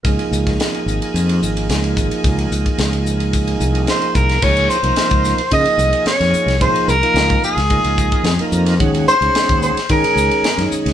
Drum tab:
CC |----------------|----------------|x---------------|----------------|
RD |xx-xxx-xxx-xxx-x|xx-xxx-xxx-xxx-x|-x-xxx-xxx-xxx-x|xx-xxx-xxx-xxx-x|
HH |p-p-p-p-p-p-p-p-|p-p-p-p-p-p-p-p-|--p---p---p---p-|--p---p---p---p-|
SD |---oo-------o---|----o-------o--o|----o-o-----oo-o|----o--o----o--o|
BD |o--o----------o-|o--o----o-----o-|o----o--o-------|o----o--o-oo----|

CC |----------------|
RD |xx-xxx-xxx-xxx-x|
HH |--p---p---p---p-|
SD |----o--o----oo-o|
BD |o----o--o-------|